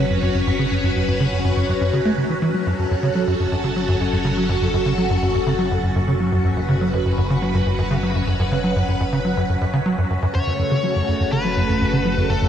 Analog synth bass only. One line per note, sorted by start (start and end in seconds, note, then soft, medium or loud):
0.10 0.17 F#2 medium
0.22 0.29 F#2 medium
0.35 0.41 F#2 medium
0.47 0.51 F#2 loud
0.59 0.66 C#3 loud
0.71 0.78 F#2 medium
0.83 0.90 F#2 medium
0.96 1.02 F#2 medium
1.08 1.12 F#2 medium
1.20 1.27 C#3 loud
1.32 1.39 F#2 medium
1.44 1.51 F#2 medium
1.57 1.63 F#2 medium
1.69 1.73 F#2 medium
1.81 1.91 F#2 loud
1.93 2.00 C#3 loud
2.05 2.12 A3 loud
2.18 2.24 C#3 medium
2.30 2.34 E3 medium
2.42 2.52 E3 loud
2.54 2.64 F#3 medium
2.66 2.73 F#2 loud
2.79 2.86 F#2 medium
2.91 2.95 F#2 medium
3.03 3.10 C#3 medium
3.15 3.25 F#3 medium
3.27 3.34 F#2 loud
3.40 3.46 F#2 medium
3.52 3.56 F#2 loud
3.64 3.71 C#3 medium
3.76 3.86 F#3 medium
3.88 3.95 F#2 loud
4.00 4.07 F#2 medium
4.13 4.17 F#2 loud
4.25 4.32 C#3 loud
4.37 4.47 F#3 medium
4.49 4.56 F#2 loud
4.61 4.68 F#2 medium
4.74 4.78 F#2 loud
4.86 4.93 C#3 loud
4.98 5.08 F#3 medium
5.10 5.17 F#2 loud
5.22 5.29 F#2 medium
5.34 5.39 F#2 loud
5.47 5.54 C#3 loud
5.59 5.69 F#3 medium
5.71 5.78 F#2 loud
5.84 5.90 F#2 medium
5.96 6.00 F#2 loud
6.08 6.15 C#3 loud
6.20 6.30 F#3 medium
6.32 6.39 F#2 loud
6.44 6.51 F#2 medium
6.57 6.61 F#2 loud
6.69 6.76 C#3 loud
6.81 6.91 F#3 medium
6.93 7.00 F#2 loud
7.05 7.12 F#2 medium
7.18 7.22 F#2 loud
7.30 7.37 C#3 medium
7.42 7.52 F#3 medium
7.54 7.61 F#2 medium
7.66 7.73 F#2 medium
7.78 7.83 F#2 loud
7.91 7.98 C#3 loud
8.03 8.13 F#3 medium
8.15 8.22 F#2 loud
8.27 8.34 F#2 medium
8.40 8.44 F#2 loud
8.52 8.59 C#3 loud
8.64 8.74 F#3 medium
8.76 8.83 F#2 loud
8.88 8.95 F#2 medium
9.00 9.05 F#2 loud
9.13 9.20 C#3 loud
9.25 9.35 F#3 medium
9.37 9.44 F#2 loud
9.49 9.56 F#2 medium
9.61 9.66 F#2 loud
9.73 9.80 C#3 loud
9.86 9.96 F#3 medium
9.98 10.05 F#2 medium
10.10 10.17 F#2 medium
10.22 10.27 F#2 loud
10.35 10.42 F#2 loud
10.47 10.54 F#2 medium
10.59 10.63 F#2 loud
10.71 10.78 C#3 loud
10.83 10.94 F#3 medium
10.96 11.03 F#2 loud
11.08 11.15 F#2 medium
11.20 11.24 F#2 medium
11.32 11.39 C#3 loud
11.44 11.55 F#3 medium
11.57 11.63 F#2 loud
11.69 11.76 F#2 medium
11.81 11.85 F#2 loud
11.93 12.00 C#3 medium
12.05 12.16 F#3 medium
12.17 12.24 F#2 loud
12.30 12.37 F#2 medium
12.42 12.46 F#2 loud